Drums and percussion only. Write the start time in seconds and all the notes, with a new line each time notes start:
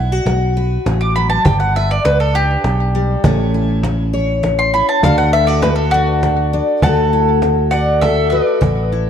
0.26 cajon slap
0.86 cajon slap
1.45 cajon bass
2.05 cajon slap
2.64 cajon slap
3.24 cajon bass
3.83 cajon slap
4.43 cajon slap
5.03 cajon bass
5.63 cajon slap
6.23 cajon slap
6.82 cajon bass
7.42 cajon slap
8.02 cajon slap
8.62 cajon bass